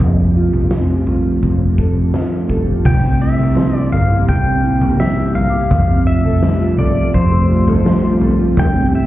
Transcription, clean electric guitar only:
Already playing: C4
0.01 F3
0.36 F4
0.72 C4
1.08 F4
1.43 C4
1.79 A4
2.15 F4
2.50 A4
2.86 C3
3.04 C4
3.22 E4
3.39 A#4
3.57 G3
3.75 E4
3.93 A#4
4.11 E4
4.28 C3
4.46 C4
4.64 E4
4.82 A#4
5.00 G3
5.17 E4
5.35 A#4
5.53 E4
5.71 F3
5.89 C4
6.06 F4
6.25 A4
6.42 G3
6.60 F4
6.78 A4
6.96 F4
7.14 F3
7.31 C4
7.49 F4
7.67 A4
7.85 G3
8.03 F4
8.22 A4
8.39 F4
8.57 C3
8.75 C4
8.93 E4

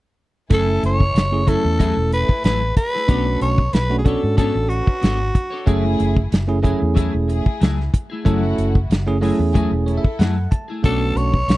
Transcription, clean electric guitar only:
0.50 F#3 A3 E4 G#4
0.67 muted clean electric guitar stroke
0.82 muted clean electric guitar stroke
1.14 muted clean electric guitar stroke
1.46 F#3 A3 E4 G#4
1.64 muted clean electric guitar stroke
1.79 F#3 A3 E4 G#4
1.97 muted clean electric guitar stroke
2.12 muted clean electric guitar stroke
2.44 F#3 A3 E4 G#4
2.61 muted clean electric guitar stroke
2.77 muted clean electric guitar stroke
2.93 A3 E4 G#4
3.08 B3 D4 A4 C#5
3.26 muted clean electric guitar stroke
3.41 muted clean electric guitar stroke
3.73 muted clean electric guitar stroke
4.05 B3 D4 A4 C#5
4.22 muted clean electric guitar stroke
4.37 B3 D4 A4 C#5
4.55 muted clean electric guitar stroke
4.70 muted clean electric guitar stroke
5.01 B3 D4 A4 C#5
5.19 muted clean electric guitar stroke
5.34 muted clean electric guitar stroke
5.50 D4 A4 C#5
5.66 F#3 A3 E4 G#4
5.84 muted clean electric guitar stroke
5.99 muted clean electric guitar stroke
6.31 muted clean electric guitar stroke
6.63 F#3 A3 E4 G#4
6.80 muted clean electric guitar stroke
6.95 F#3 A3 E4 G#4
7.13 muted clean electric guitar stroke
7.28 muted clean electric guitar stroke
7.60 F#3 A3 E4 G#4
7.78 muted clean electric guitar stroke
7.93 muted clean electric guitar stroke
8.10 A3 E4 G#4
8.25 F#3 A3 E4 G#4
8.42 muted clean electric guitar stroke
8.57 muted clean electric guitar stroke
8.90 muted clean electric guitar stroke
9.22 F#3 A3 E4 G#4
9.39 muted clean electric guitar stroke
9.54 F#3 A3 E4 G#4
9.87 muted clean electric guitar stroke
10.19 F#3 A3 E4 G#4
10.36 muted clean electric guitar stroke
10.52 muted clean electric guitar stroke
10.68 A3 E4 G#4
10.84 B3 D4 A4 C#5
11.01 muted clean electric guitar stroke
11.16 muted clean electric guitar stroke
11.48 muted clean electric guitar stroke

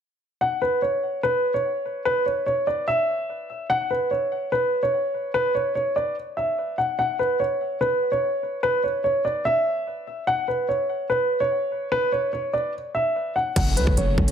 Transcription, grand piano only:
0.41 F#5
0.62 B4
0.82 C#5
1.23 B4
1.54 C#5
2.05 B4
2.26 C#5
2.46 C#5
2.67 D5
2.88 E5
3.70 F#5
3.90 B4
4.11 C#5
4.52 B4
4.83 C#5
5.34 B4
5.55 C#5
5.75 C#5
5.96 D5
6.37 E5
6.78 F#5
6.99 F#5
7.19 B4
7.40 C#5
7.81 B4
8.12 C#5
8.63 B4
8.84 C#5
9.04 C#5
9.25 D5
9.45 E5
10.27 F#5
10.48 B4
10.69 C#5
11.10 B4
11.40 C#5
11.92 B4
12.12 C#5
12.33 C#5
12.53 D5
12.95 E5
13.36 F#5
13.56 F#5
13.77 B4
13.97 C#5

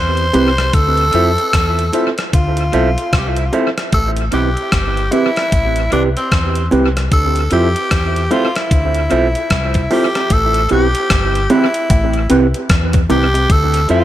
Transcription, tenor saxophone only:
Already playing: C5
0.74 A4
2.35 F4
3.19 G4
3.29 F4
3.39 E4
3.46 F4
3.94 A4
4.34 G4
5.13 E4
5.93 D4
6.17 C4
7.13 A4
7.53 G4
8.32 F4
8.56 E4
9.93 G4
10.33 A4
10.72 G4
11.51 E4
13.11 G4
13.52 A4
13.91 F4

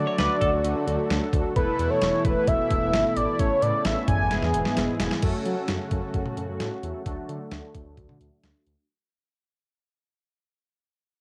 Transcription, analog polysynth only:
Already playing: A3 D4 F#4 A4
1.56 A3 B3 E4 A4
3.39 A3 C#4 E4 A4
4.31 G#3 B3 E4 G#4
5.22 A3 C#4 F#4 A4
7.06 A3 D4 F#4 A4

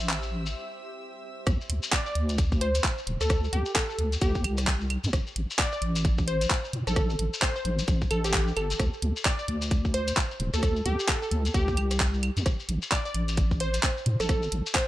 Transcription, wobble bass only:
Already playing: A1
1.47 D2
1.70 D2
2.15 D2
3.07 D1
3.21 D2
3.53 D2
3.99 D2
4.22 D2
4.44 C2
5.04 F2
5.13 A1
5.36 A1
5.82 A1
6.73 A2
6.87 A1
7.19 A1
7.65 A1
7.88 A1
8.11 A1
8.57 G1
8.80 D2
9.02 D2
9.48 D2
10.40 D1
10.54 D2
10.86 D2
11.31 D2
11.54 D2
11.77 C2
12.37 F2
12.46 A1
12.69 A1
13.15 A1
14.06 A2
14.20 A1
14.52 A1

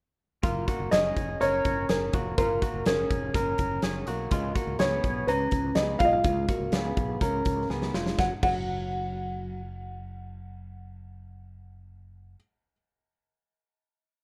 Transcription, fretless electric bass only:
0.44 F#1
0.80 F#1
0.92 F#1
1.17 F1
1.41 F#1
1.65 F#1
1.90 F#1
2.13 F1
2.38 F#1
2.74 F#1
2.86 F#1
3.10 F1
3.34 F#1
3.59 F#1
3.83 F#1
4.07 B1
4.31 C#2
4.67 C#2
4.79 C#2
5.04 B1
5.27 C#2
5.52 C#2
5.76 C#2
6.00 B1
6.24 C#2
6.60 C#2
6.72 C#2
6.97 B1
7.21 C#2
7.46 C#2
7.69 C#2
7.94 F1
8.19 F#1
8.43 F#1

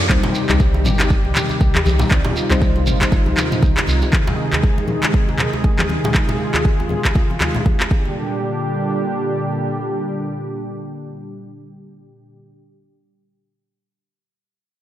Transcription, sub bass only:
0.10 C2
0.49 C2
0.85 G1
1.25 C2
1.61 C2
1.86 C2
2.11 C2
2.51 C2
2.87 G1
3.27 C2
3.63 C2
3.88 C2

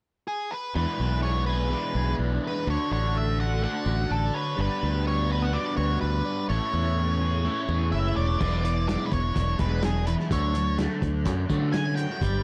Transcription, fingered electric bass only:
0.75 E2
1.00 B1
1.95 B1
2.19 B1
2.67 D2
2.91 A1
3.86 A1
4.11 A1
4.58 G1
4.83 D2
5.77 D2
6.02 D2
6.50 A1
6.73 E2
7.69 E2
7.93 F#1
8.17 E1
8.41 E1
9.12 E1
9.36 E1
9.59 E1
10.31 D2
11.02 D2
11.26 F#2
11.50 D3
12.21 G1

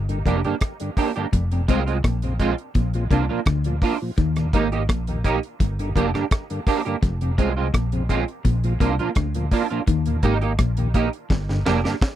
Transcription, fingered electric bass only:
Already playing: G1
0.26 F1
1.34 F1
1.69 C2
2.05 A#1
2.76 A#1
3.11 C2
3.47 D2
4.18 D#2
4.54 G#1
4.90 A#1
5.61 G1
5.96 F1
7.03 F1
7.39 C2
7.75 A#1
8.46 A#1
8.81 C2
9.17 D2
9.88 D#2
10.24 G#1
10.59 A#1
11.31 G1
11.67 F1

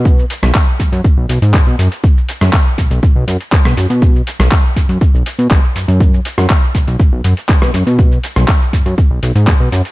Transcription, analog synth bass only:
Already playing: B2
0.43 B1
0.80 F#2
0.92 F#2
1.17 B1
1.29 B1
1.42 G#2
1.67 B2
1.79 F#2
2.41 F#2
2.78 B1
2.91 B1
3.03 B1
3.16 B1
3.28 F#2
3.65 B2
3.77 F#2
3.90 B2
4.39 B1
4.76 F#2
4.89 F#2
5.14 B1
5.39 B2
5.51 B1
5.76 F#2
5.88 F#2
6.38 F#2
6.75 B1
6.87 B1
7.00 B1
7.12 B1
7.24 F#2
7.62 B2
7.74 F#2
7.87 B2
8.36 B1
8.73 F#2
8.86 F#2
9.11 B1
9.23 B1
9.35 G#2
9.60 B2
9.72 F#2

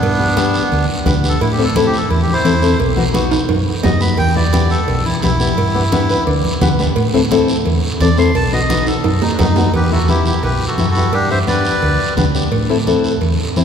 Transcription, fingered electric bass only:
0.02 G2
0.72 D2
1.06 D2
1.41 A2
2.10 E2
2.45 E2
2.80 B1
3.49 F#2
3.84 F#2
4.19 E2
4.88 B1
5.23 B1
5.57 G2
6.27 D2
6.62 D2
6.96 A2
7.66 E2
8.00 E2
8.35 B1
9.04 F#2
9.39 F#2
9.74 E2
10.43 B1
10.78 F#2
11.13 G2
11.82 D2
12.17 D2
12.52 A2
13.22 E2
13.56 E2

